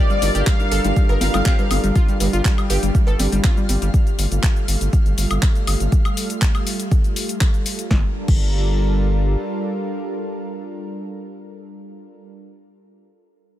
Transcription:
Already playing: G3 D4 F4 A4 A#4 D5 F5 F6
0.10 G3, closed hi-hat, cabasa
0.22 G1 G3 D4 F4 A#4, open hi-hat, cabasa
0.35 G1 G3 D4 F4 G4 A#4, closed hi-hat, cabasa
0.47 G3 F5, kick, clap, closed hi-hat, cabasa
0.60 G3 D4 F4 A#4, closed hi-hat, cabasa
0.72 G1 A4, open hi-hat, cabasa
0.84 G1 G3 D4 F4 A#4, closed hi-hat, cabasa
0.96 G3 A4, kick, closed hi-hat, cabasa
1.09 G1 A#4, closed hi-hat, cowbell, cabasa
1.21 G1 G3 D4 F4 A#4 F5, open hi-hat, high conga, cabasa
1.34 G1 G3 D4 F4 A4, closed hi-hat, cabasa, high woodblock
1.46 G4, kick, clap, closed hi-hat, high conga, cabasa
1.59 G3, closed hi-hat, cowbell, cabasa
1.71 G1 G3 D4 F4 A4, open hi-hat, high conga, cabasa, high woodblock
1.84 G1 G3, closed hi-hat, cabasa
1.96 F4 G4, kick, closed hi-hat, cabasa
2.08 G3, closed hi-hat, cabasa
2.20 G1 G3, open hi-hat, cowbell, cabasa
2.33 G1 F4, closed hi-hat, cabasa
2.45 G3, kick, clap, closed hi-hat, cabasa
2.58 G3, closed hi-hat, cabasa, high woodblock
2.70 G1 G4, open hi-hat, cowbell, cabasa
2.83 G1 G3, closed hi-hat, cabasa
2.95 G3, kick, closed hi-hat, cabasa
3.07 G1 A4, closed hi-hat, cowbell, cabasa
3.19 G1 G3, open hi-hat, high conga, cabasa
3.32 G1 G3, closed hi-hat, cabasa
3.44 F4, kick, clap, closed hi-hat, high conga, cabasa
3.57 G3, closed hi-hat, cabasa
3.69 G1 G3, open hi-hat, high conga, cabasa
3.82 G1 G3, closed hi-hat, cabasa
3.94 G3 A3, kick, closed hi-hat, cabasa
4.07 closed hi-hat, cabasa
4.18 G1, open hi-hat, cabasa
4.31 G1, closed hi-hat, cabasa
4.43 kick, clap, closed hi-hat, cabasa
4.56 closed hi-hat, cabasa
4.68 G1, open hi-hat, cabasa
4.81 G1, closed hi-hat, cabasa
4.93 kick, closed hi-hat, cabasa
5.06 G1, closed hi-hat, cabasa
5.18 G1, open hi-hat, cabasa
5.31 G1, closed hi-hat, cabasa, high woodblock
5.42 kick, clap, closed hi-hat, cabasa
5.55 closed hi-hat, cabasa
5.67 G1, open hi-hat, cabasa, high woodblock
5.80 G1, closed hi-hat, cabasa
5.92 kick, closed hi-hat, cabasa
6.05 closed hi-hat, cabasa, high woodblock
6.17 open hi-hat, cabasa
6.30 closed hi-hat, cabasa
6.42 kick, clap, closed hi-hat, cabasa
6.55 closed hi-hat, cabasa, high woodblock
6.67 open hi-hat, cabasa
6.80 closed hi-hat, cabasa
6.91 kick, closed hi-hat, cabasa
7.04 closed hi-hat, cabasa
7.16 open hi-hat, cabasa
7.29 closed hi-hat, cabasa
7.41 kick, clap, closed hi-hat, cabasa
7.54 closed hi-hat, cabasa
7.66 open hi-hat, cabasa
7.79 closed hi-hat, cabasa
7.91 G1 G3 D4 F4 A4 A#4, kick, snare
8.28 G1, kick, crash

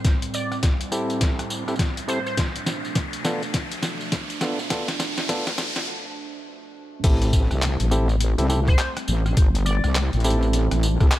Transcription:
Already playing: A2 G3 C4, riser
0.05 kick, snare, closed hi-hat, tambourine
0.22 closed hi-hat, tambourine
0.34 D5, tambourine
0.52 cross-stick, tambourine
0.63 kick, snare, closed hi-hat, tambourine
0.81 closed hi-hat, tambourine
0.92 C4 E4 G4 A4, tambourine
1.10 closed hi-hat, tambourine
1.21 kick, snare, closed hi-hat, tambourine
1.39 cross-stick, closed hi-hat, tambourine
1.50 tambourine
1.68 C4 E4 G4 A4, cross-stick, tambourine
1.76 kick, snare, closed hi-hat, tambourine
1.79 tambourine
1.97 closed hi-hat, tambourine
2.08 C4 E4 G4 A4 C5, tambourine
2.26 C5, tambourine
2.37 B2 F3 A3 D4, kick, snare, closed hi-hat, tambourine
2.56 closed hi-hat, tambourine
2.67 snare, tambourine
2.85 tambourine
2.95 kick, snare, closed hi-hat, tambourine
3.13 closed hi-hat, tambourine
3.25 B3 D4 F4 A4, snare, tambourine
3.43 closed hi-hat, tambourine
3.54 kick, snare, closed hi-hat, tambourine
3.72 closed hi-hat, tambourine
3.83 snare, tambourine
4.01 tambourine
4.12 kick, snare, closed hi-hat, tambourine
4.30 closed hi-hat, tambourine
4.41 B3 D4 F4 A4, snare, tambourine
4.59 tambourine
4.70 B3 D4 F4 A4, kick, snare, closed hi-hat, tambourine
4.88 snare, closed hi-hat, tambourine
5.00 snare, tambourine
5.18 snare, closed hi-hat, tambourine
5.29 B3 D4 F4 A4, kick, snare, closed hi-hat, tambourine
5.47 snare, closed hi-hat, tambourine
5.58 snare, tambourine
5.76 snare, closed hi-hat, tambourine
7.04 A1 G3 A3 C4 E4 G4 A4, kick, closed hi-hat, crash, tambourine
7.22 closed hi-hat, tambourine
7.33 kick, tambourine
7.51 C2, cross-stick, tambourine
7.62 clap, closed hi-hat, tambourine
7.80 A1, closed hi-hat, tambourine
7.91 C4 E4 G4 A4, tambourine
8.09 tambourine
8.21 closed hi-hat, tambourine
8.38 C2 C4 E4 G4 A4, closed hi-hat, tambourine
8.49 C4 E4 G4 A4, tambourine
8.67 C5, kick, tambourine
8.79 clap, closed hi-hat, tambourine
8.97 cross-stick, closed hi-hat, tambourine
9.08 A1, tambourine
9.26 cross-stick, tambourine
9.37 G1, kick, closed hi-hat, tambourine
9.55 closed hi-hat, tambourine
9.65 D5, tambourine
9.84 C2, cross-stick, tambourine
9.95 clap, closed hi-hat, tambourine
10.13 A1, closed hi-hat, tambourine
10.20 closed hi-hat
10.24 C4 E4 G4 A4, tambourine
10.30 closed hi-hat
10.42 tambourine
10.53 closed hi-hat, tambourine
10.71 A1, cross-stick, closed hi-hat, tambourine
10.83 tambourine
11.00 C2 C4 E4 G4 A4, kick, cross-stick, tambourine
11.11 clap, closed hi-hat, tambourine

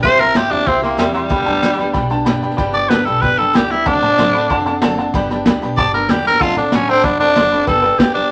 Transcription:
0.03 C2 C3 G3 C4 E4 G4 C5 E5 G5 C6, kick, snare
0.19 C4 E4 G4 A#4 E5 G5 C6, snare
0.34 G2 C3 G3 C4 E4 G4 E5 G5 C6, snare, hi-hat pedal
0.50 E2 C4 D4 E4 G4 E5 G5 D6, snare
0.60 snare
0.64 C2 G3 C4 E4 G4 E5 G5, kick, snare
0.68 C6
0.81 A#3 C4 E4 G4 E5 G5 C6, snare
0.97 E2 C3 G3 C4 E4 G4 E5 G5 C6, snare, hi-hat pedal
1.12 G3 C4 E4 G4 E5 G5 C6, snare
1.29 G1 G2 D3 G3 B3 D4 G4 D5 G5 B5, kick, snare
1.45 D2 G3 B3 D4 G4 D5 G5 A5, snare
1.62 D2 G2 D3 G3 B3 D4 G4 D5 G5 B5, snare, hi-hat pedal
1.77 G3 B3 D4 G4 D5 G5 B5, snare
1.93 B1 G3 B3 D4 G4 D5 G5 B5, kick, snare
2.10 G3 B3 D4 G4 D5 G5 A5, snare
2.25 E1 G2 D3 G3 B3 D4 G4 D5 G5 B5, snare, hi-hat pedal
2.42 G3 B3 D4 G4 D5 G5 B5, snare
2.50 snare
2.57 G1 G2 D3 G3 B3 D4 G4 D5 G5 B5, kick, snare
2.73 G3 B3 D4 G4 D5 G5 D6, snare
2.89 D2 G2 D3 G3 B3 B4 D5 G5 B5, snare, hi-hat pedal
2.93 D4 G4
3.05 B1 G3 B3 D4 G4 A4 D5 G5 B5, snare
3.21 G1 G3 B3 D4 G4 B4 D5 G5 B5, kick, snare
3.38 G3 B3 D4 G4 A4 D5 G5 B5, snare
3.53 C#2 G2 D3 G3 B3 D4 G4 D5 G5 B5, snare, hi-hat pedal
3.69 G3 B3 D4 E4 G4 D5 G5 D6, snare
3.85 D2 D3 F#3 C4 D4 A4 D5 F#5 A5, kick, snare
4.01 A2 C4 D4 A4 D5 F#5 A5, snare
4.18 A2 D3 F#3 C4 D4 A4 D5 F#5 C6, snare, hi-hat pedal
4.33 C4 D4 A4 D5 F#5 B5, snare
4.50 F#2 F#3 C4 D4 A4 D5 F#5 A5, kick, snare
4.65 C4 D4 A4 D5 F#5 A5, snare
4.82 F#1 D3 F#3 C4 D4 A4 D5 F#5 A5, snare, hi-hat pedal
4.98 C4 D4 A4 D5 F#5 A5, snare
5.13 G1 G2 D3 G3 B3 D4 G4 D5 G5 B5, kick, snare
5.30 G3 B3 D4 G4 D5 G5 B5, snare
5.46 D2 G2 D3 G3 B3 D4 G4 D5 G5 B5, snare, hi-hat pedal
5.61 B1 G3 B3 D4 G4 D5 G5 B5, snare
5.77 G1 G3 B3 D4 G4 D5 G5 A5, kick, snare
5.93 G3 B3 D4 G4 A#4 D5 G5 B5, snare
6.09 E2 G2 D3 G3 B3 D4 G4 D5 G5 B5, snare, hi-hat pedal
6.24 G3 B3 D4 G4 A#4 D5 G5 B5, snare
6.33 snare
6.41 D2 D3 F#3 C4 D4 F4 A4 D5 F#5 A5, kick, snare
6.56 A2 C4 D4 A4 D5 F#5 A5, snare
6.71 A2 D3 F#3 C4 C#4 D4 A4 D5 F#5 B5, snare, hi-hat pedal
6.88 C4 D4 A4 D5 F#5 A5, snare
7.03 F#2 F#3 C4 D4 A4 D5 F#5 B5, kick, snare
7.20 C4 D4 A4 D5 F#5 A5, snare
7.35 F#1 D3 F#3 C4 D4 A4 D5 F#5 C6, snare, hi-hat pedal
7.51 C4 D4 A4 D5 F#5 B5, snare
7.60 snare
7.66 G1 G2 D3 G3 B3 D4 G4 A4 B4 D5 G5, kick, snare
7.82 G3 B3 D4 G4 B4 D5 G5, snare
7.98 G3 B3 D4 G4 B4 D5, kick, snare, hi-hat pedal
8.14 G3 B3 D4 G4 B4 D5 G5, snare
8.23 snare

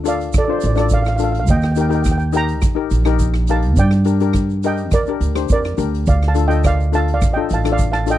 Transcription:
Already playing: D2
0.04 D4 F4 A4 D5, closed hi-hat, shaker
0.08 F5
0.21 closed hi-hat, shaker
0.33 A1, kick, cross-stick, closed hi-hat, shaker
0.38 A4 D5
0.45 D4 D5
0.49 F4 C5 D5
0.59 D5, shaker
0.63 A1 D5, closed hi-hat
0.76 D4 F4 A4 D5, cross-stick, closed hi-hat, shaker
0.80 D5
0.89 D5, kick, closed hi-hat, shaker
0.94 F5
1.03 F5, cross-stick, shaker
1.08 F5
1.16 D4 F4 A4 F5, closed hi-hat, shaker
1.24 F5
1.32 F5, closed hi-hat
1.40 F5
1.47 D#2 D#5 G5, kick, closed hi-hat, shaker
1.57 G5
1.62 G5, cross-stick, shaker
1.72 G5, shaker
1.76 D#4 G4 A#4, closed hi-hat
1.81 G5
1.89 D#4 G4 A#4 G5, closed hi-hat, shaker
1.95 G5
2.02 G5, kick, cross-stick, closed hi-hat, shaker
2.11 G5
2.18 G5, shaker
2.33 D#4 G4 A#4 G5, closed hi-hat, shaker
2.37 A#5
2.48 closed hi-hat, shaker
2.62 A#1, kick, cross-stick, closed hi-hat, shaker
2.75 D#4 G4 A#4
2.91 A#1, closed hi-hat, shaker
3.05 D#4 G4 A#4, cross-stick, closed hi-hat, shaker
3.19 kick, closed hi-hat, shaker
3.34 cross-stick, shaker
3.47 D#4 G4 A#4 F5 A5, closed hi-hat, shaker
3.62 closed hi-hat
3.76 G2 D5 G5, kick, closed hi-hat, shaker
3.91 cross-stick, shaker
4.04 D4 G4 A#4, closed hi-hat, shaker
4.20 D4 G4 A#4, closed hi-hat, shaker
4.33 kick, cross-stick, closed hi-hat, shaker
4.50 shaker
4.63 D4 G4 A#4 D#5 G5, closed hi-hat, shaker
4.77 closed hi-hat, shaker
4.91 D2 A#4 D5, kick, cross-stick, closed hi-hat, shaker
5.06 D4 G4 A#4, shaker
5.21 D2, closed hi-hat, shaker
5.35 D4 G4 C5, cross-stick, closed hi-hat
5.49 F2 A#4 D5, kick, closed hi-hat, shaker
5.64 cross-stick, shaker
5.77 D2 D4 G4 A#4, closed hi-hat, shaker
5.94 closed hi-hat
6.07 D2 D5 F5, kick, closed hi-hat, shaker
6.22 cross-stick, shaker
6.28 F5 A5
6.35 D4 F4 A4, closed hi-hat, shaker
6.48 D4 F4 A4 D#5 G5, closed hi-hat, shaker
6.64 D5 F5, kick, cross-stick, closed hi-hat, shaker
6.80 shaker
6.92 D4 F4 A4 F5 A5, closed hi-hat, shaker
7.08 closed hi-hat
7.14 D5 F5
7.22 A1, kick, cross-stick, closed hi-hat, shaker
7.33 D4 F4 A4 D#5 G5
7.50 A1 F5, closed hi-hat, shaker
7.54 A5
7.65 D4 F4 A4, cross-stick, closed hi-hat, shaker
7.72 D5 F5
7.78 kick, closed hi-hat, shaker
7.92 F5 A5, cross-stick, shaker
8.06 D4 F4 A4, closed hi-hat, shaker
8.10 D#5 G5

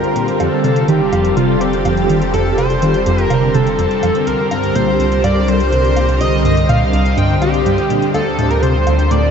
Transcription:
Already playing: C2 D3 G3 C4 F4 A#4
0.04 closed hi-hat
0.16 A#2, closed hi-hat
0.28 closed hi-hat
0.40 F1 F2 A4, closed hi-hat, low woodblock
0.64 C3 A4, closed hi-hat
0.69 A4
0.76 closed hi-hat
0.88 D#3 G4, closed hi-hat
1.13 F2, closed hi-hat, low woodblock
1.25 closed hi-hat
1.37 C3 F4, closed hi-hat
1.61 C4 G4, closed hi-hat
1.73 closed hi-hat
1.85 F2, closed hi-hat, low woodblock
1.97 closed hi-hat
2.09 D#3, closed hi-hat
2.22 closed hi-hat
2.33 F2 A4, closed hi-hat
2.58 C3 C5, closed hi-hat, low woodblock
2.70 closed hi-hat
2.82 D#3, closed hi-hat
2.94 closed hi-hat
3.06 F2, closed hi-hat
3.18 closed hi-hat
3.24 A#4
3.30 C3, closed hi-hat, low woodblock
3.54 C3 A4, closed hi-hat
3.67 closed hi-hat
3.79 F2, closed hi-hat
3.91 closed hi-hat
4.03 F2, closed hi-hat, low woodblock
4.15 closed hi-hat
4.27 C2 D3 A#4, closed hi-hat
4.51 G2 A#4, closed hi-hat, low woodblock
4.63 closed hi-hat
4.75 A#2 C5, closed hi-hat
5.00 C2, closed hi-hat
5.12 closed hi-hat
5.24 G2 D5, closed hi-hat, low woodblock
5.48 G3 C5, closed hi-hat
5.60 closed hi-hat
5.72 C2, closed hi-hat
5.84 closed hi-hat
5.96 A#2, closed hi-hat, low woodblock
6.09 closed hi-hat
6.21 C2 D#5, closed hi-hat
6.45 G2 D#5, closed hi-hat
6.57 closed hi-hat
6.69 A#2 F5, closed hi-hat, low woodblock
6.93 C2, closed hi-hat
7.06 closed hi-hat
7.17 G2 G5, closed hi-hat
7.42 G3 G4, closed hi-hat, low woodblock
7.54 closed hi-hat
7.66 G2, closed hi-hat
7.78 closed hi-hat
7.90 A#2, closed hi-hat
8.02 closed hi-hat
8.14 D2 A4, closed hi-hat, low woodblock
8.38 A2 A4, closed hi-hat
8.51 A#4, closed hi-hat
8.62 C3 C5, closed hi-hat
8.87 D2, closed hi-hat, low woodblock
8.99 A4, closed hi-hat
9.11 A2 D5, closed hi-hat

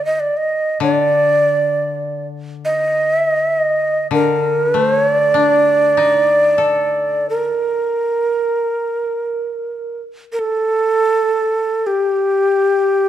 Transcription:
Already playing: D3
0.05 D#5
0.20 D5
0.37 D#5
0.80 D3 D5
2.65 D#5
3.16 E5
3.29 D#5
3.44 E5
3.58 D#5
4.11 D3 A#4
4.60 B4
4.74 A3
4.78 C5
4.96 C#5
5.14 D5
5.34 D4
5.97 D#4
6.58 A4
7.30 A#4
10.33 A#4
10.39 A4
11.87 G4

